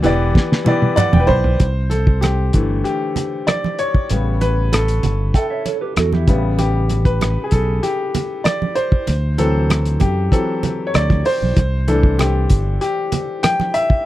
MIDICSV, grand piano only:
0, 0, Header, 1, 2, 480
1, 0, Start_track
1, 0, Tempo, 622407
1, 1238, Time_signature, 4, 2, 24, 8
1, 10839, End_track
2, 0, Start_track
2, 0, Title_t, "Grand piano"
2, 0, Program_c, 0, 0
2, 0, Control_c, 0, 64, 127
2, 19, Note_on_c, 0, 52, 88
2, 26, Note_on_c, 0, 59, 82
2, 35, Note_on_c, 0, 67, 82
2, 43, Note_on_c, 0, 74, 94
2, 49, Control_c, 0, 64, 0
2, 193, Control_c, 0, 64, 127
2, 412, Note_off_c, 0, 52, 0
2, 416, Note_off_c, 0, 59, 0
2, 421, Note_off_c, 0, 67, 0
2, 425, Note_off_c, 0, 74, 0
2, 496, Note_on_c, 0, 52, 68
2, 505, Note_on_c, 0, 59, 72
2, 516, Note_on_c, 0, 67, 65
2, 521, Note_on_c, 0, 74, 84
2, 729, Note_off_c, 0, 74, 0
2, 741, Note_on_c, 0, 74, 103
2, 753, Note_on_c, 0, 78, 69
2, 867, Note_off_c, 0, 78, 0
2, 876, Note_on_c, 0, 79, 70
2, 923, Note_on_c, 0, 71, 75
2, 941, Note_off_c, 0, 74, 0
2, 944, Note_off_c, 0, 52, 0
2, 949, Note_off_c, 0, 59, 0
2, 954, Note_off_c, 0, 67, 0
2, 980, Note_on_c, 0, 72, 116
2, 987, Note_off_c, 0, 71, 0
2, 988, Note_off_c, 0, 79, 0
2, 989, Note_on_c, 0, 83, 73
2, 1216, Note_off_c, 0, 83, 0
2, 1249, Control_c, 0, 64, 0
2, 1361, Control_c, 0, 64, 127
2, 1464, Note_on_c, 0, 69, 81
2, 1484, Note_off_c, 0, 72, 0
2, 1519, Note_off_c, 0, 69, 0
2, 1705, Note_on_c, 0, 67, 70
2, 1955, Note_on_c, 0, 50, 50
2, 1960, Note_on_c, 0, 52, 48
2, 1962, Note_on_c, 0, 57, 58
2, 2181, Note_off_c, 0, 67, 0
2, 2193, Note_on_c, 0, 67, 76
2, 2676, Note_on_c, 0, 74, 90
2, 2690, Note_off_c, 0, 67, 0
2, 2922, Note_on_c, 0, 73, 96
2, 2925, Note_off_c, 0, 74, 0
2, 3127, Note_off_c, 0, 50, 0
2, 3129, Note_off_c, 0, 52, 0
2, 3130, Note_off_c, 0, 57, 0
2, 3168, Note_on_c, 0, 49, 45
2, 3170, Control_c, 0, 64, 0
2, 3174, Note_on_c, 0, 55, 42
2, 3177, Note_on_c, 0, 59, 49
2, 3317, Control_c, 0, 64, 127
2, 3402, Note_on_c, 0, 71, 80
2, 3415, Note_off_c, 0, 73, 0
2, 3644, Note_on_c, 0, 69, 76
2, 3648, Note_off_c, 0, 71, 0
2, 3853, Note_off_c, 0, 49, 0
2, 3856, Note_off_c, 0, 55, 0
2, 3858, Note_off_c, 0, 59, 0
2, 4118, Note_off_c, 0, 69, 0
2, 4129, Note_on_c, 0, 69, 72
2, 4814, Note_off_c, 0, 69, 0
2, 4844, Note_on_c, 0, 49, 56
2, 4847, Note_on_c, 0, 55, 50
2, 4848, Control_c, 0, 64, 0
2, 4852, Note_on_c, 0, 59, 59
2, 4998, Control_c, 0, 64, 127
2, 5080, Note_on_c, 0, 67, 69
2, 5415, Note_off_c, 0, 67, 0
2, 5438, Note_on_c, 0, 71, 73
2, 5532, Note_off_c, 0, 49, 0
2, 5533, Note_off_c, 0, 55, 0
2, 5536, Note_off_c, 0, 59, 0
2, 5736, Note_on_c, 0, 68, 50
2, 5754, Note_off_c, 0, 71, 0
2, 5796, Note_off_c, 0, 68, 0
2, 5796, Note_on_c, 0, 69, 74
2, 6038, Note_on_c, 0, 67, 74
2, 6046, Note_off_c, 0, 69, 0
2, 6511, Note_on_c, 0, 74, 82
2, 6534, Note_off_c, 0, 67, 0
2, 6566, Note_off_c, 0, 74, 0
2, 6751, Note_on_c, 0, 72, 86
2, 7012, Control_c, 0, 64, 0
2, 7158, Control_c, 0, 64, 127
2, 7234, Note_on_c, 0, 52, 49
2, 7236, Note_on_c, 0, 69, 85
2, 7237, Note_on_c, 0, 54, 49
2, 7245, Note_on_c, 0, 60, 59
2, 7250, Note_off_c, 0, 72, 0
2, 7556, Note_off_c, 0, 52, 0
2, 7558, Note_off_c, 0, 54, 0
2, 7562, Note_off_c, 0, 60, 0
2, 7717, Note_on_c, 0, 67, 76
2, 7733, Note_off_c, 0, 69, 0
2, 7956, Note_on_c, 0, 52, 44
2, 7959, Note_on_c, 0, 69, 83
2, 7960, Note_on_c, 0, 54, 44
2, 7964, Note_on_c, 0, 60, 49
2, 7966, Note_off_c, 0, 67, 0
2, 8174, Note_off_c, 0, 52, 0
2, 8176, Note_off_c, 0, 54, 0
2, 8179, Note_off_c, 0, 60, 0
2, 8381, Note_on_c, 0, 73, 61
2, 8398, Note_off_c, 0, 69, 0
2, 8438, Note_off_c, 0, 73, 0
2, 8444, Note_on_c, 0, 74, 85
2, 8681, Note_on_c, 0, 72, 103
2, 8689, Note_off_c, 0, 74, 0
2, 8929, Control_c, 0, 64, 0
2, 9051, Control_c, 0, 64, 127
2, 9130, Note_off_c, 0, 72, 0
2, 9158, Note_on_c, 0, 52, 54
2, 9162, Note_on_c, 0, 69, 79
2, 9163, Note_on_c, 0, 57, 46
2, 9169, Note_on_c, 0, 62, 57
2, 9399, Note_on_c, 0, 67, 74
2, 9408, Note_off_c, 0, 69, 0
2, 9847, Note_off_c, 0, 52, 0
2, 9850, Note_off_c, 0, 57, 0
2, 9853, Note_off_c, 0, 62, 0
2, 9870, Note_off_c, 0, 67, 0
2, 9881, Note_on_c, 0, 67, 85
2, 10329, Note_off_c, 0, 67, 0
2, 10357, Note_on_c, 0, 79, 89
2, 10596, Note_on_c, 0, 76, 104
2, 10605, Note_off_c, 0, 79, 0
2, 10839, Note_off_c, 0, 76, 0
2, 10839, End_track
0, 0, End_of_file